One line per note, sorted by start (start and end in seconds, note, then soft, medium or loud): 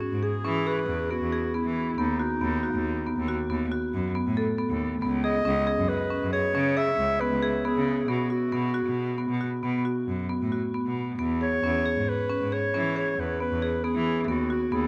0.00 0.20 C#4 medium
0.00 0.25 F#4 medium
0.12 0.29 G#2 medium
0.23 0.42 G#4 medium
0.23 0.69 G#4 medium
0.45 0.78 E3 medium
0.45 0.64 C#4 medium
0.67 1.05 G#4 medium
0.67 1.12 B4 medium
0.89 1.06 E2 medium
1.11 1.30 B3 medium
1.11 1.57 F#4 medium
1.21 1.38 E2 medium
1.33 1.52 G#4 medium
1.54 1.92 B3 medium
1.54 2.00 E4 medium
1.65 1.90 E3 medium
1.98 2.14 D#2 medium
1.98 2.17 B3 medium
1.98 2.19 D#4 medium
2.19 3.46 D#4 medium
2.19 2.39 F#4 medium
2.41 2.66 D#2 medium
2.41 2.60 B3 medium
2.63 3.01 F#4 medium
2.74 3.07 D#2 medium
3.06 3.26 B3 medium
3.18 3.34 D#2 medium
3.28 3.47 F#4 medium
3.50 3.67 D#2 medium
3.50 3.69 B3 medium
3.72 4.10 F#4 medium
3.93 4.10 F#2 medium
4.15 4.34 B3 medium
4.26 4.43 A2 medium
4.37 4.56 A4 medium
4.58 4.96 B3 medium
4.69 4.94 D#2 medium
5.02 5.35 C#2 medium
5.02 5.21 B3 medium
5.24 5.43 G#4 medium
5.24 5.90 D#5 loud
5.45 5.62 C#2 loud
5.45 5.64 C#4 medium
5.67 6.05 G#4 medium
5.78 5.95 F#2 medium
5.89 6.32 B4 medium
6.11 6.30 C#4 medium
6.22 6.39 F#2 medium
6.33 6.52 G#4 medium
6.33 6.79 C#5 medium
6.54 6.88 C#3 medium
6.54 6.74 C#4 medium
6.77 7.15 G#4 medium
6.77 7.22 E5 loud
6.98 7.15 C#2 medium
7.21 7.40 B3 medium
7.21 7.64 B4 medium
7.31 7.48 C#2 medium
7.42 7.62 G#4 medium
7.65 8.03 B3 medium
7.65 8.11 G#4 medium
7.75 8.01 C#3 medium
8.08 8.25 B2 medium
8.08 8.27 B3 medium
8.08 8.31 F#4 medium
8.30 8.49 F#4 medium
8.30 9.60 F#4 medium
8.52 8.77 B2 medium
8.52 8.71 B3 medium
8.74 9.13 F#4 medium
8.85 9.19 B2 medium
9.18 9.38 B3 medium
9.29 9.46 B2 medium
9.41 9.60 F#4 medium
9.63 9.80 B2 medium
9.63 9.82 B3 medium
9.85 10.24 F#4 medium
10.07 10.24 F#2 medium
10.30 10.49 B3 medium
10.41 10.58 A2 medium
10.52 10.71 F#4 medium
10.74 11.13 B3 medium
10.86 11.11 B2 medium
11.19 11.53 E2 medium
11.19 11.38 B3 medium
11.41 11.60 G#4 medium
11.41 12.11 C#5 loud
11.64 11.80 E2 medium
11.64 11.83 C#4 medium
11.86 12.24 G#4 medium
11.96 12.13 G#2 medium
12.09 12.55 B4 medium
12.30 12.49 C#4 medium
12.41 12.58 G#2 medium
12.52 12.71 G#4 medium
12.52 12.97 C#5 medium
12.74 13.08 E3 medium
12.74 12.93 C#4 medium
12.96 13.35 G#4 medium
12.96 13.22 C#5 medium
13.19 13.35 E2 medium
13.19 13.41 B4 medium
13.40 13.59 B3 medium
13.40 13.86 B4 medium
13.52 13.68 E2 medium
13.62 13.81 G#4 medium
13.84 14.22 B3 medium
13.84 14.28 G#4 medium
13.95 14.20 E3 medium
14.28 14.45 D#2 medium
14.28 14.47 B3 medium
14.28 14.49 F#4 medium
14.50 14.69 F#4 medium
14.50 14.75 F#4 medium
14.72 14.87 D#2 medium
14.72 14.87 B3 medium
14.72 14.87 G#4 medium